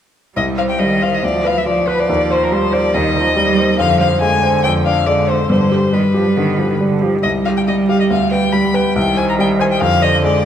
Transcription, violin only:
0.37 0.45 D#5 medium
0.58 0.62 F5 medium
0.70 0.81 G5 medium
0.79 1.04 D#5 medium
1.02 1.16 F5 medium
1.14 1.26 D#5 soft
1.24 1.48 D5 medium
1.46 1.59 F5 medium
1.58 1.66 E5 medium
1.67 1.90 D5 medium
1.88 2.01 B4 medium
2.00 2.33 D5 medium
2.31 2.45 C5 medium
2.43 2.54 A#4 soft
2.52 2.75 C5 medium
2.73 2.96 D5 medium
2.94 3.78 D#5 medium
3.79 3.99 F5 medium
4.00 4.20 F5 medium
4.21 4.63 G#5 medium
4.63 4.71 G5 medium
4.85 5.08 F5 medium
5.06 5.31 D5 medium
5.29 5.50 C5 medium
5.50 5.95 C5 medium
5.93 6.80 B4 soft
7.23 7.31 D#5 medium
7.45 7.50 F5 medium
7.57 7.61 G5 soft
7.67 7.75 D#5 medium
7.89 8.00 F5 medium
8.00 8.04 D#5 medium
8.10 8.31 F5 medium
8.32 8.54 G5 medium
8.53 8.76 B5 medium
8.75 8.96 G5 medium
8.96 9.19 G5 medium
9.17 9.28 G#5 medium
9.29 9.33 A#5 medium
9.40 9.48 G5 medium
9.61 9.65 G#5 medium
9.72 9.81 G5 medium
9.81 10.04 F5 medium
10.02 10.23 D#5 medium
10.24 10.45 D5 medium

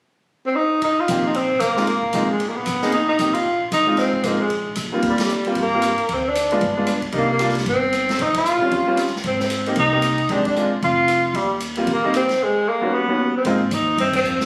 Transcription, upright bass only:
1.09 1.50 A#1 medium
1.61 2.02 A#1 medium
2.14 2.55 A#1 medium
2.67 3.08 A#1 medium
3.19 3.60 A#1 medium
3.72 4.13 A#1 medium
4.24 4.65 A#1 medium
4.77 5.01 A#1 medium
5.03 5.53 D#2 medium
5.56 5.95 G2 medium
5.97 muted upright bass stroke soft
6.09 6.59 D2 medium
6.61 7.11 G1 medium
7.13 7.63 C2 medium
7.66 8.16 G1 medium
8.19 8.58 A#1 medium
8.61 muted upright bass stroke soft
8.71 9.22 D#2 medium
9.24 9.74 G#1 medium
9.77 10.27 C2 medium
10.30 10.80 A#1 medium
10.82 11.32 F1 medium
11.34 11.84 D#2 medium
11.87 12.37 A#1 medium
13.45 13.71 G#2 medium
13.72 13.97 D#2 medium
13.97 14.23 G2 medium
14.25 14.46 F2 medium

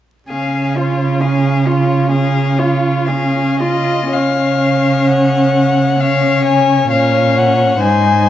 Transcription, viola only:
0.30 0.77 C#4 soft
0.75 1.22 F4 soft
1.21 1.67 C#4 soft
1.66 2.11 F4 soft
2.11 2.60 C#4 soft
2.59 3.11 F4 soft
3.09 3.63 C#4 soft
3.62 4.13 F4 soft
4.14 5.97 C#4 soft
6.01 6.91 C#4 soft
6.94 7.83 C#4 soft
7.83 8.29 D#4 soft

